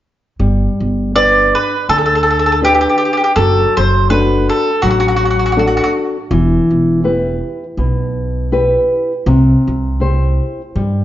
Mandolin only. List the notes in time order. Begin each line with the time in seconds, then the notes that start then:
1.16 D5
1.55 B4
1.89 A4
1.98 A4
2.06 A4
2.15 A4
2.23 A4
2.30 A4
2.39 A4
2.46 A4
2.52 A4
2.65 G4
2.75 G4
2.81 G4
2.89 G4
2.98 G4
3.05 G4
3.13 G4
3.17 G4
3.24 G4
3.36 A4
3.77 C5
4.10 B4
4.49 A4
4.82 F#4
4.91 F#4
5.00 F#4
5.08 F#4
5.16 F#4
5.25 F#4
5.31 F#4
5.39 F#4
5.46 F#4
5.52 F#4
5.59 F#4
5.67 F#4
5.77 F#4
5.84 F#4